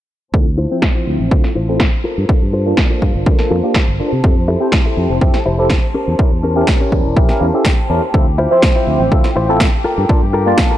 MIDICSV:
0, 0, Header, 1, 8, 480
1, 0, Start_track
1, 0, Key_signature, -1, "minor"
1, 0, Tempo, 487805
1, 335, Time_signature, 4, 2, 24, 8
1, 10605, End_track
2, 0, Start_track
2, 0, Title_t, "Violin section"
2, 0, Program_c, 0, 48
2, 334, Note_on_c, 0, 72, 79
2, 334, Note_on_c, 0, 81, 81
2, 8006, Note_on_c, 0, 67, 77
2, 8008, Note_on_c, 0, 79, 82
2, 8024, Note_off_c, 0, 72, 0
2, 8024, Note_off_c, 0, 81, 0
2, 10605, Note_off_c, 0, 67, 0
2, 10605, Note_off_c, 0, 79, 0
2, 10605, End_track
3, 0, Start_track
3, 0, Title_t, "Clean electric guitar"
3, 0, Program_c, 1, 27
3, 567, Note_on_c, 1, 64, 105
3, 574, Note_on_c, 1, 65, 81
3, 575, Note_on_c, 1, 72, 116
3, 755, Note_off_c, 1, 64, 0
3, 757, Note_off_c, 1, 65, 0
3, 758, Note_off_c, 1, 72, 0
3, 935, Note_on_c, 1, 64, 80
3, 938, Note_on_c, 1, 65, 73
3, 949, Note_on_c, 1, 72, 76
3, 1179, Note_off_c, 1, 64, 0
3, 1181, Note_off_c, 1, 65, 0
3, 1183, Note_off_c, 1, 72, 0
3, 1529, Note_on_c, 1, 64, 107
3, 1537, Note_on_c, 1, 65, 82
3, 1539, Note_on_c, 1, 72, 113
3, 1660, Note_off_c, 1, 64, 0
3, 1661, Note_off_c, 1, 65, 0
3, 1664, Note_off_c, 1, 72, 0
3, 2008, Note_on_c, 1, 65, 83
3, 2017, Note_on_c, 1, 69, 59
3, 2017, Note_on_c, 1, 70, 91
3, 2402, Note_off_c, 1, 65, 0
3, 2404, Note_off_c, 1, 69, 0
3, 2405, Note_off_c, 1, 70, 0
3, 2489, Note_on_c, 1, 65, 100
3, 2493, Note_on_c, 1, 69, 97
3, 2498, Note_on_c, 1, 72, 117
3, 2675, Note_off_c, 1, 65, 0
3, 2677, Note_off_c, 1, 69, 0
3, 2680, Note_off_c, 1, 72, 0
3, 2855, Note_on_c, 1, 65, 82
3, 2859, Note_on_c, 1, 69, 73
3, 2864, Note_on_c, 1, 72, 85
3, 3098, Note_off_c, 1, 65, 0
3, 3100, Note_off_c, 1, 69, 0
3, 3103, Note_off_c, 1, 72, 0
3, 3450, Note_on_c, 1, 65, 97
3, 3457, Note_on_c, 1, 69, 80
3, 3459, Note_on_c, 1, 70, 107
3, 3580, Note_off_c, 1, 65, 0
3, 3582, Note_off_c, 1, 69, 0
3, 3584, Note_off_c, 1, 70, 0
3, 4409, Note_on_c, 1, 64, 107
3, 4413, Note_on_c, 1, 67, 95
3, 4417, Note_on_c, 1, 69, 114
3, 4595, Note_off_c, 1, 64, 0
3, 4597, Note_off_c, 1, 67, 0
3, 4599, Note_off_c, 1, 69, 0
3, 4776, Note_on_c, 1, 64, 82
3, 4780, Note_on_c, 1, 67, 74
3, 4785, Note_on_c, 1, 69, 90
3, 5019, Note_off_c, 1, 64, 0
3, 5021, Note_off_c, 1, 67, 0
3, 5023, Note_off_c, 1, 69, 0
3, 5369, Note_on_c, 1, 64, 106
3, 5374, Note_on_c, 1, 67, 92
3, 5378, Note_on_c, 1, 72, 111
3, 5499, Note_off_c, 1, 64, 0
3, 5501, Note_off_c, 1, 67, 0
3, 5504, Note_off_c, 1, 72, 0
3, 5849, Note_on_c, 1, 61, 81
3, 5856, Note_on_c, 1, 67, 70
3, 5857, Note_on_c, 1, 70, 87
3, 6242, Note_off_c, 1, 61, 0
3, 6243, Note_off_c, 1, 67, 0
3, 6245, Note_off_c, 1, 70, 0
3, 6329, Note_on_c, 1, 61, 106
3, 6337, Note_on_c, 1, 67, 82
3, 6339, Note_on_c, 1, 70, 114
3, 6516, Note_off_c, 1, 61, 0
3, 6518, Note_off_c, 1, 67, 0
3, 6520, Note_off_c, 1, 70, 0
3, 6698, Note_on_c, 1, 61, 89
3, 6707, Note_on_c, 1, 67, 69
3, 6708, Note_on_c, 1, 73, 88
3, 6816, Note_on_c, 1, 74, 67
3, 6941, Note_off_c, 1, 61, 0
3, 6942, Note_off_c, 1, 67, 0
3, 6945, Note_off_c, 1, 73, 0
3, 7038, Note_off_c, 1, 74, 0
3, 7054, Note_on_c, 1, 76, 72
3, 7278, Note_off_c, 1, 76, 0
3, 7289, Note_on_c, 1, 77, 64
3, 7296, Note_on_c, 1, 67, 82
3, 7297, Note_on_c, 1, 61, 90
3, 7298, Note_on_c, 1, 70, 117
3, 7419, Note_off_c, 1, 61, 0
3, 7421, Note_off_c, 1, 67, 0
3, 7423, Note_off_c, 1, 70, 0
3, 7517, Note_off_c, 1, 77, 0
3, 7541, Note_on_c, 1, 79, 61
3, 7758, Note_off_c, 1, 79, 0
3, 7773, Note_on_c, 1, 81, 66
3, 7997, Note_off_c, 1, 81, 0
3, 8248, Note_on_c, 1, 64, 107
3, 8253, Note_on_c, 1, 65, 92
3, 8257, Note_on_c, 1, 72, 117
3, 8435, Note_off_c, 1, 64, 0
3, 8437, Note_off_c, 1, 65, 0
3, 8439, Note_off_c, 1, 72, 0
3, 8616, Note_on_c, 1, 64, 82
3, 8619, Note_on_c, 1, 65, 82
3, 8626, Note_on_c, 1, 72, 74
3, 8859, Note_off_c, 1, 64, 0
3, 8861, Note_off_c, 1, 65, 0
3, 8863, Note_off_c, 1, 72, 0
3, 9207, Note_on_c, 1, 64, 105
3, 9214, Note_on_c, 1, 65, 77
3, 9215, Note_on_c, 1, 72, 115
3, 9338, Note_off_c, 1, 64, 0
3, 9340, Note_off_c, 1, 65, 0
3, 9342, Note_off_c, 1, 72, 0
3, 9686, Note_on_c, 1, 65, 84
3, 9690, Note_on_c, 1, 69, 78
3, 9697, Note_on_c, 1, 70, 82
3, 10080, Note_off_c, 1, 65, 0
3, 10082, Note_off_c, 1, 69, 0
3, 10084, Note_off_c, 1, 70, 0
3, 10167, Note_on_c, 1, 65, 105
3, 10172, Note_on_c, 1, 69, 94
3, 10176, Note_on_c, 1, 70, 115
3, 10354, Note_off_c, 1, 65, 0
3, 10356, Note_off_c, 1, 69, 0
3, 10359, Note_off_c, 1, 70, 0
3, 10535, Note_on_c, 1, 65, 84
3, 10542, Note_on_c, 1, 69, 69
3, 10544, Note_on_c, 1, 70, 91
3, 10605, Note_off_c, 1, 65, 0
3, 10605, Note_off_c, 1, 69, 0
3, 10605, Note_off_c, 1, 70, 0
3, 10605, End_track
4, 0, Start_track
4, 0, Title_t, "Tine electric piano"
4, 0, Program_c, 2, 4
4, 331, Note_on_c, 2, 60, 82
4, 333, Note_on_c, 2, 64, 75
4, 337, Note_on_c, 2, 65, 78
4, 338, Note_on_c, 2, 69, 91
4, 435, Note_off_c, 2, 60, 0
4, 436, Note_off_c, 2, 64, 0
4, 438, Note_off_c, 2, 65, 0
4, 439, Note_off_c, 2, 69, 0
4, 698, Note_on_c, 2, 60, 87
4, 702, Note_on_c, 2, 76, 79
4, 706, Note_on_c, 2, 53, 78
4, 711, Note_on_c, 2, 72, 97
4, 1266, Note_off_c, 2, 60, 0
4, 1267, Note_off_c, 2, 76, 0
4, 1270, Note_off_c, 2, 53, 0
4, 1272, Note_off_c, 2, 72, 0
4, 1298, Note_on_c, 2, 60, 86
4, 1299, Note_on_c, 2, 64, 79
4, 1303, Note_on_c, 2, 65, 80
4, 1305, Note_on_c, 2, 69, 94
4, 1456, Note_off_c, 2, 60, 0
4, 1457, Note_off_c, 2, 64, 0
4, 1458, Note_off_c, 2, 65, 0
4, 1460, Note_off_c, 2, 69, 0
4, 1661, Note_on_c, 2, 60, 91
4, 1662, Note_on_c, 2, 64, 86
4, 1665, Note_on_c, 2, 65, 87
4, 1668, Note_on_c, 2, 69, 104
4, 1811, Note_off_c, 2, 60, 0
4, 1812, Note_off_c, 2, 64, 0
4, 1813, Note_off_c, 2, 65, 0
4, 1815, Note_off_c, 2, 69, 0
4, 2250, Note_on_c, 2, 58, 72
4, 2254, Note_on_c, 2, 62, 70
4, 2255, Note_on_c, 2, 65, 67
4, 2260, Note_on_c, 2, 69, 81
4, 2355, Note_off_c, 2, 58, 0
4, 2357, Note_off_c, 2, 62, 0
4, 2357, Note_off_c, 2, 65, 0
4, 2360, Note_off_c, 2, 69, 0
4, 2618, Note_on_c, 2, 58, 86
4, 2622, Note_on_c, 2, 62, 77
4, 2628, Note_on_c, 2, 65, 77
4, 2634, Note_on_c, 2, 81, 91
4, 3186, Note_off_c, 2, 58, 0
4, 3188, Note_off_c, 2, 62, 0
4, 3191, Note_off_c, 2, 65, 0
4, 3194, Note_off_c, 2, 81, 0
4, 3211, Note_on_c, 2, 58, 74
4, 3215, Note_on_c, 2, 62, 68
4, 3216, Note_on_c, 2, 65, 67
4, 3218, Note_on_c, 2, 69, 81
4, 3309, Note_off_c, 2, 58, 0
4, 3311, Note_off_c, 2, 62, 0
4, 3312, Note_off_c, 2, 65, 0
4, 3313, Note_off_c, 2, 69, 0
4, 3335, Note_on_c, 2, 58, 83
4, 3337, Note_on_c, 2, 62, 76
4, 3340, Note_on_c, 2, 65, 75
4, 3343, Note_on_c, 2, 69, 92
4, 3488, Note_off_c, 2, 58, 0
4, 3489, Note_off_c, 2, 62, 0
4, 3491, Note_off_c, 2, 65, 0
4, 3492, Note_off_c, 2, 69, 0
4, 3574, Note_on_c, 2, 58, 73
4, 3575, Note_on_c, 2, 62, 66
4, 3580, Note_on_c, 2, 65, 68
4, 3580, Note_on_c, 2, 67, 82
4, 3728, Note_off_c, 2, 58, 0
4, 3728, Note_off_c, 2, 62, 0
4, 3731, Note_off_c, 2, 65, 0
4, 3731, Note_off_c, 2, 67, 0
4, 3928, Note_on_c, 2, 58, 75
4, 3929, Note_on_c, 2, 62, 71
4, 3933, Note_on_c, 2, 65, 70
4, 3934, Note_on_c, 2, 69, 85
4, 4034, Note_off_c, 2, 58, 0
4, 4034, Note_off_c, 2, 62, 0
4, 4036, Note_off_c, 2, 65, 0
4, 4037, Note_off_c, 2, 69, 0
4, 4168, Note_on_c, 2, 60, 82
4, 4169, Note_on_c, 2, 64, 76
4, 4173, Note_on_c, 2, 67, 75
4, 4173, Note_on_c, 2, 69, 90
4, 4274, Note_off_c, 2, 60, 0
4, 4274, Note_off_c, 2, 64, 0
4, 4276, Note_off_c, 2, 67, 0
4, 4276, Note_off_c, 2, 69, 0
4, 4527, Note_on_c, 2, 60, 88
4, 4532, Note_on_c, 2, 64, 78
4, 4540, Note_on_c, 2, 67, 78
4, 4544, Note_on_c, 2, 72, 98
4, 5100, Note_off_c, 2, 60, 0
4, 5103, Note_off_c, 2, 64, 0
4, 5107, Note_off_c, 2, 67, 0
4, 5109, Note_off_c, 2, 72, 0
4, 5127, Note_on_c, 2, 60, 86
4, 5127, Note_on_c, 2, 64, 79
4, 5130, Note_on_c, 2, 67, 80
4, 5135, Note_on_c, 2, 69, 97
4, 5291, Note_off_c, 2, 60, 0
4, 5291, Note_off_c, 2, 64, 0
4, 5292, Note_off_c, 2, 67, 0
4, 5295, Note_off_c, 2, 69, 0
4, 5497, Note_on_c, 2, 60, 95
4, 5497, Note_on_c, 2, 64, 87
4, 5501, Note_on_c, 2, 67, 87
4, 5503, Note_on_c, 2, 69, 108
4, 5649, Note_off_c, 2, 60, 0
4, 5649, Note_off_c, 2, 64, 0
4, 5651, Note_off_c, 2, 67, 0
4, 5652, Note_off_c, 2, 69, 0
4, 6085, Note_on_c, 2, 61, 73
4, 6087, Note_on_c, 2, 64, 69
4, 6091, Note_on_c, 2, 67, 69
4, 6094, Note_on_c, 2, 70, 81
4, 6193, Note_off_c, 2, 61, 0
4, 6193, Note_off_c, 2, 64, 0
4, 6195, Note_off_c, 2, 67, 0
4, 6197, Note_off_c, 2, 70, 0
4, 6450, Note_on_c, 2, 61, 85
4, 6456, Note_on_c, 2, 64, 81
4, 6460, Note_on_c, 2, 67, 77
4, 6466, Note_on_c, 2, 70, 96
4, 7021, Note_off_c, 2, 61, 0
4, 7025, Note_off_c, 2, 64, 0
4, 7027, Note_off_c, 2, 67, 0
4, 7029, Note_off_c, 2, 70, 0
4, 7052, Note_on_c, 2, 61, 72
4, 7054, Note_on_c, 2, 64, 67
4, 7057, Note_on_c, 2, 67, 68
4, 7058, Note_on_c, 2, 70, 82
4, 7150, Note_off_c, 2, 61, 0
4, 7151, Note_off_c, 2, 64, 0
4, 7152, Note_off_c, 2, 67, 0
4, 7153, Note_off_c, 2, 70, 0
4, 7175, Note_on_c, 2, 61, 84
4, 7179, Note_on_c, 2, 64, 76
4, 7181, Note_on_c, 2, 67, 80
4, 7186, Note_on_c, 2, 70, 95
4, 7328, Note_off_c, 2, 61, 0
4, 7330, Note_off_c, 2, 64, 0
4, 7331, Note_off_c, 2, 67, 0
4, 7334, Note_off_c, 2, 70, 0
4, 7420, Note_on_c, 2, 61, 72
4, 7423, Note_on_c, 2, 64, 68
4, 7425, Note_on_c, 2, 67, 68
4, 7428, Note_on_c, 2, 69, 81
4, 7571, Note_off_c, 2, 61, 0
4, 7572, Note_off_c, 2, 64, 0
4, 7573, Note_off_c, 2, 67, 0
4, 7575, Note_off_c, 2, 69, 0
4, 7769, Note_on_c, 2, 61, 79
4, 7771, Note_on_c, 2, 64, 68
4, 7776, Note_on_c, 2, 67, 69
4, 7778, Note_on_c, 2, 70, 88
4, 7875, Note_off_c, 2, 61, 0
4, 7875, Note_off_c, 2, 64, 0
4, 7878, Note_off_c, 2, 67, 0
4, 7879, Note_off_c, 2, 70, 0
4, 8010, Note_on_c, 2, 60, 85
4, 8012, Note_on_c, 2, 64, 77
4, 8015, Note_on_c, 2, 65, 76
4, 8018, Note_on_c, 2, 69, 90
4, 8115, Note_off_c, 2, 60, 0
4, 8116, Note_off_c, 2, 64, 0
4, 8118, Note_off_c, 2, 65, 0
4, 8119, Note_off_c, 2, 69, 0
4, 8373, Note_on_c, 2, 60, 84
4, 8376, Note_on_c, 2, 76, 78
4, 8381, Note_on_c, 2, 53, 78
4, 8387, Note_on_c, 2, 72, 97
4, 8943, Note_off_c, 2, 60, 0
4, 8944, Note_off_c, 2, 76, 0
4, 8947, Note_off_c, 2, 53, 0
4, 8950, Note_off_c, 2, 72, 0
4, 8969, Note_on_c, 2, 60, 91
4, 8972, Note_on_c, 2, 64, 79
4, 8975, Note_on_c, 2, 65, 78
4, 8977, Note_on_c, 2, 69, 93
4, 9132, Note_off_c, 2, 60, 0
4, 9133, Note_off_c, 2, 64, 0
4, 9135, Note_off_c, 2, 65, 0
4, 9136, Note_off_c, 2, 69, 0
4, 9338, Note_on_c, 2, 60, 94
4, 9342, Note_on_c, 2, 64, 86
4, 9343, Note_on_c, 2, 65, 88
4, 9347, Note_on_c, 2, 69, 104
4, 9489, Note_off_c, 2, 60, 0
4, 9492, Note_off_c, 2, 64, 0
4, 9492, Note_off_c, 2, 65, 0
4, 9494, Note_off_c, 2, 69, 0
4, 9934, Note_on_c, 2, 58, 77
4, 9934, Note_on_c, 2, 62, 70
4, 9938, Note_on_c, 2, 65, 72
4, 9941, Note_on_c, 2, 69, 82
4, 10037, Note_off_c, 2, 58, 0
4, 10037, Note_off_c, 2, 62, 0
4, 10039, Note_off_c, 2, 65, 0
4, 10040, Note_off_c, 2, 69, 0
4, 10293, Note_on_c, 2, 58, 87
4, 10298, Note_on_c, 2, 62, 80
4, 10303, Note_on_c, 2, 65, 81
4, 10308, Note_on_c, 2, 81, 95
4, 10605, Note_off_c, 2, 58, 0
4, 10605, Note_off_c, 2, 62, 0
4, 10605, Note_off_c, 2, 65, 0
4, 10605, Note_off_c, 2, 81, 0
4, 10605, End_track
5, 0, Start_track
5, 0, Title_t, "Fingered electric bass"
5, 0, Program_c, 3, 33
5, 332, Note_on_c, 3, 38, 93
5, 639, Note_off_c, 3, 38, 0
5, 1055, Note_on_c, 3, 38, 77
5, 1144, Note_off_c, 3, 38, 0
5, 1182, Note_on_c, 3, 33, 77
5, 1260, Note_off_c, 3, 33, 0
5, 1292, Note_on_c, 3, 38, 98
5, 1382, Note_off_c, 3, 38, 0
5, 1534, Note_on_c, 3, 33, 85
5, 1840, Note_off_c, 3, 33, 0
5, 2143, Note_on_c, 3, 43, 84
5, 2247, Note_off_c, 3, 43, 0
5, 2382, Note_on_c, 3, 43, 74
5, 2680, Note_off_c, 3, 43, 0
5, 2972, Note_on_c, 3, 43, 74
5, 3062, Note_off_c, 3, 43, 0
5, 3101, Note_on_c, 3, 31, 79
5, 3180, Note_off_c, 3, 31, 0
5, 3212, Note_on_c, 3, 38, 88
5, 3334, Note_off_c, 3, 38, 0
5, 3453, Note_on_c, 3, 41, 91
5, 3542, Note_off_c, 3, 41, 0
5, 3820, Note_on_c, 3, 31, 87
5, 3927, Note_off_c, 3, 31, 0
5, 4058, Note_on_c, 3, 48, 80
5, 4139, Note_off_c, 3, 48, 0
5, 4172, Note_on_c, 3, 41, 93
5, 4479, Note_off_c, 3, 41, 0
5, 4892, Note_on_c, 3, 41, 78
5, 4982, Note_off_c, 3, 41, 0
5, 5019, Note_on_c, 3, 29, 80
5, 5099, Note_off_c, 3, 29, 0
5, 5131, Note_on_c, 3, 41, 97
5, 5222, Note_off_c, 3, 41, 0
5, 5374, Note_on_c, 3, 29, 89
5, 5680, Note_off_c, 3, 29, 0
5, 5980, Note_on_c, 3, 40, 85
5, 6084, Note_off_c, 3, 40, 0
5, 6221, Note_on_c, 3, 40, 77
5, 6519, Note_off_c, 3, 40, 0
5, 6811, Note_on_c, 3, 40, 74
5, 6902, Note_off_c, 3, 40, 0
5, 6939, Note_on_c, 3, 28, 81
5, 7019, Note_off_c, 3, 28, 0
5, 7051, Note_on_c, 3, 34, 89
5, 7173, Note_off_c, 3, 34, 0
5, 7291, Note_on_c, 3, 40, 86
5, 7381, Note_off_c, 3, 40, 0
5, 7770, Note_on_c, 3, 40, 79
5, 7861, Note_off_c, 3, 40, 0
5, 8011, Note_on_c, 3, 38, 93
5, 8319, Note_off_c, 3, 38, 0
5, 8730, Note_on_c, 3, 38, 80
5, 8821, Note_off_c, 3, 38, 0
5, 8859, Note_on_c, 3, 33, 82
5, 8939, Note_off_c, 3, 33, 0
5, 8972, Note_on_c, 3, 38, 94
5, 9062, Note_off_c, 3, 38, 0
5, 9214, Note_on_c, 3, 33, 86
5, 9520, Note_off_c, 3, 33, 0
5, 9819, Note_on_c, 3, 43, 88
5, 9925, Note_off_c, 3, 43, 0
5, 10060, Note_on_c, 3, 43, 78
5, 10359, Note_off_c, 3, 43, 0
5, 10605, End_track
6, 0, Start_track
6, 0, Title_t, "Muted clean electric guitar strokes"
6, 1415, Note_on_c, 9, 29, 84
6, 1513, Note_off_c, 9, 29, 0
6, 3335, Note_on_c, 9, 29, 81
6, 3434, Note_off_c, 9, 29, 0
6, 5254, Note_on_c, 9, 29, 84
6, 5352, Note_off_c, 9, 29, 0
6, 7179, Note_on_c, 9, 29, 83
6, 7278, Note_off_c, 9, 29, 0
6, 7529, Note_on_c, 9, 29, 29
6, 7627, Note_off_c, 9, 29, 0
6, 9096, Note_on_c, 9, 29, 82
6, 9195, Note_off_c, 9, 29, 0
6, 9447, Note_on_c, 9, 29, 30
6, 9545, Note_off_c, 9, 29, 0
6, 10605, End_track
7, 0, Start_track
7, 0, Title_t, "Muted fingered electric bass strokes"
7, 2013, Note_on_c, 9, 29, 40
7, 2111, Note_off_c, 9, 29, 0
7, 3933, Note_on_c, 9, 29, 42
7, 4032, Note_off_c, 9, 29, 0
7, 5854, Note_on_c, 9, 29, 41
7, 5953, Note_off_c, 9, 29, 0
7, 7179, Note_on_c, 9, 29, 39
7, 7277, Note_off_c, 9, 29, 0
7, 9691, Note_on_c, 9, 29, 42
7, 9790, Note_off_c, 9, 29, 0
7, 9931, Note_on_c, 9, 29, 41
7, 10030, Note_off_c, 9, 29, 0
7, 10605, End_track
8, 0, Start_track
8, 0, Title_t, "Drums"
8, 332, Note_on_c, 9, 36, 104
8, 430, Note_off_c, 9, 36, 0
8, 808, Note_on_c, 9, 38, 113
8, 813, Note_on_c, 9, 36, 107
8, 906, Note_off_c, 9, 38, 0
8, 911, Note_off_c, 9, 36, 0
8, 1293, Note_on_c, 9, 36, 109
8, 1391, Note_off_c, 9, 36, 0
8, 1417, Note_on_c, 9, 38, 34
8, 1515, Note_off_c, 9, 38, 0
8, 1769, Note_on_c, 9, 38, 113
8, 1773, Note_on_c, 9, 36, 111
8, 1867, Note_off_c, 9, 38, 0
8, 1871, Note_off_c, 9, 36, 0
8, 2253, Note_on_c, 9, 36, 108
8, 2352, Note_off_c, 9, 36, 0
8, 2727, Note_on_c, 9, 38, 113
8, 2732, Note_on_c, 9, 36, 113
8, 2826, Note_off_c, 9, 38, 0
8, 2831, Note_off_c, 9, 36, 0
8, 2972, Note_on_c, 9, 36, 54
8, 3071, Note_off_c, 9, 36, 0
8, 3212, Note_on_c, 9, 36, 111
8, 3310, Note_off_c, 9, 36, 0
8, 3333, Note_on_c, 9, 38, 35
8, 3431, Note_off_c, 9, 38, 0
8, 3685, Note_on_c, 9, 38, 116
8, 3691, Note_on_c, 9, 36, 109
8, 3783, Note_off_c, 9, 38, 0
8, 3790, Note_off_c, 9, 36, 0
8, 4171, Note_on_c, 9, 36, 110
8, 4269, Note_off_c, 9, 36, 0
8, 4645, Note_on_c, 9, 38, 115
8, 4652, Note_on_c, 9, 36, 117
8, 4743, Note_off_c, 9, 38, 0
8, 4750, Note_off_c, 9, 36, 0
8, 5131, Note_on_c, 9, 36, 112
8, 5229, Note_off_c, 9, 36, 0
8, 5253, Note_on_c, 9, 38, 35
8, 5351, Note_off_c, 9, 38, 0
8, 5605, Note_on_c, 9, 38, 111
8, 5611, Note_on_c, 9, 36, 117
8, 5703, Note_off_c, 9, 38, 0
8, 5709, Note_off_c, 9, 36, 0
8, 6091, Note_on_c, 9, 36, 112
8, 6190, Note_off_c, 9, 36, 0
8, 6565, Note_on_c, 9, 38, 108
8, 6571, Note_on_c, 9, 36, 114
8, 6663, Note_off_c, 9, 38, 0
8, 6670, Note_off_c, 9, 36, 0
8, 6811, Note_on_c, 9, 36, 58
8, 6910, Note_off_c, 9, 36, 0
8, 7051, Note_on_c, 9, 36, 116
8, 7149, Note_off_c, 9, 36, 0
8, 7171, Note_on_c, 9, 38, 34
8, 7270, Note_off_c, 9, 38, 0
8, 7524, Note_on_c, 9, 38, 110
8, 7531, Note_on_c, 9, 36, 115
8, 7623, Note_off_c, 9, 38, 0
8, 7629, Note_off_c, 9, 36, 0
8, 8010, Note_on_c, 9, 36, 108
8, 8109, Note_off_c, 9, 36, 0
8, 8486, Note_on_c, 9, 38, 104
8, 8491, Note_on_c, 9, 36, 112
8, 8585, Note_off_c, 9, 38, 0
8, 8590, Note_off_c, 9, 36, 0
8, 8971, Note_on_c, 9, 36, 113
8, 9070, Note_off_c, 9, 36, 0
8, 9094, Note_on_c, 9, 38, 33
8, 9192, Note_off_c, 9, 38, 0
8, 9447, Note_on_c, 9, 38, 106
8, 9451, Note_on_c, 9, 36, 110
8, 9546, Note_off_c, 9, 38, 0
8, 9550, Note_off_c, 9, 36, 0
8, 9932, Note_on_c, 9, 36, 105
8, 10030, Note_off_c, 9, 36, 0
8, 10407, Note_on_c, 9, 38, 106
8, 10412, Note_on_c, 9, 36, 110
8, 10506, Note_off_c, 9, 38, 0
8, 10510, Note_off_c, 9, 36, 0
8, 10605, End_track
0, 0, End_of_file